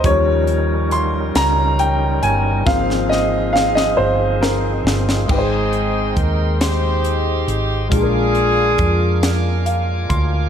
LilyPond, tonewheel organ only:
\new Staff \with { instrumentName = "Tonewheel organ" } { \time 6/8 \key aes \major \tempo 4. = 46 <g des' ees' bes'>2. | <f c' ees' aes'>2. | <aes ees'' g'' c'''>2. | <bes' f'' aes'' d'''>2. | }